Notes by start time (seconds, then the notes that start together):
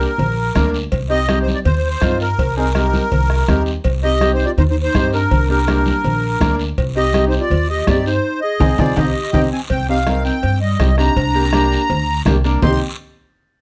Already playing: A#4
0.01 short guiro
0.18 A#1, cowbell, low conga, long guiro
0.55 D2 A#3 D4 A#4, bombo low, bombo rim, cowbell, high conga, low conga, short guiro
0.74 short guiro
0.92 C2, bombo low, cowbell, long guiro
1.09 C4 D#4 G4 D#5
1.28 C4 D#4 G4, bombo rim, cowbell, high conga, short guiro
1.42 C5
1.48 high conga, short guiro
1.54 D5
1.65 D#2 C5, cowbell, low conga, long guiro
1.77 C5
1.90 C5
2.01 G2 C4 D#4 F4, bombo low, bombo rim, cowbell, high conga, short guiro
2.20 A#4, short guiro
2.39 C2, bombo low, cowbell, long guiro
2.57 C4 D#4 G#4 A#4
2.75 C4 D#4 G4, bombo rim, cowbell, high conga, short guiro
2.93 high conga, short guiro
3.12 C2, cowbell, low conga, long guiro
3.30 bombo rim
3.48 D#2 C4 D#4 G4, bombo low, bombo rim, cowbell, high conga, low conga, short guiro
3.66 short guiro
3.84 C2, bombo low, cowbell, long guiro
4.03 C4 D#4 G4 D#5
4.21 C4 D#4 G4, bombo rim, cowbell, high conga, short guiro
4.33 D#4 C5
4.39 short guiro
4.45 F4 D5
4.58 D#2 D#4 C5, cowbell, low conga, long guiro
4.70 D#4 C5
4.83 D#4 C5
4.94 G2 C4 D#4 G4, bombo low, bombo rim, cowbell, high conga, short guiro
5.13 D4 A#4, short guiro
5.31 C2, bombo low, cowbell, low conga, long guiro
5.49 A#3 D4 G4 A#4
5.67 A#3 D4 G4, bombo rim, cowbell, high conga, short guiro
5.86 high conga, short guiro
6.04 A#1, cowbell, low conga, long guiro
6.40 D2 A#3 D4 A#4, bombo low, bombo rim, cowbell, high conga, low conga, short guiro
6.59 short guiro
6.78 C2, bombo low, cowbell, long guiro
6.95 C4 D#4 G4 D#5
7.13 C4 D#4 G4, bombo rim, cowbell, high conga, short guiro
7.27 D#4 C5
7.32 short guiro
7.39 F4 D5
7.50 D#2, cowbell, low conga, long guiro
7.69 G4 D#5
7.87 G2 C4 D#4 G4 D5, bombo low, bombo rim, cowbell, high conga, low timbale, short guiro
8.06 D#4 C5, short guiro
8.41 G#4 D#5
8.60 C2 C4 D#4 G#4, bombo low, low conga, high timbale, long guiro
8.78 C2 C4 D#4 F4 G#4 D5, bombo low, low conga, high timbale, long guiro
8.96 C2 C4 D#4 G4 D#5, bombo low, low conga, high timbale, long guiro
9.33 C2 C4 D#4 G4 G5, bombo low, low conga, high timbale
9.52 C4 G#5
9.70 C2 C4 G5, bombo low, cowbell, high conga, long guiro
9.88 C4 D#4 G4 F5
10.06 C4 D#4 A#4, bombo rim, cowbell, high conga, short guiro
10.25 C4 G5, short guiro
10.43 G2, cowbell, high conga, long guiro
10.61 G3 D#5
10.79 C2 C4 D#4 G4, bombo low, bombo rim, cowbell, high conga, short guiro
10.97 C4 D4 D#4 G4 A#5, bombo rim, short guiro
11.16 C2, bombo low, cowbell, high conga, long guiro
11.35 A#3 D4 G4
11.53 A#3 D4 G4, bombo rim, cowbell, high conga, short guiro
11.72 short guiro
11.90 D2, cowbell, high conga, low conga, long guiro
12.25 C2 A#3 D4 G4, bombo low, bombo rim, cowbell, high conga, low conga, low timbale, short guiro
12.44 A#3 D4 A#4, short guiro
12.62 C2 C4 D#4 G4 C6, bombo low, low conga, low timbale, long guiro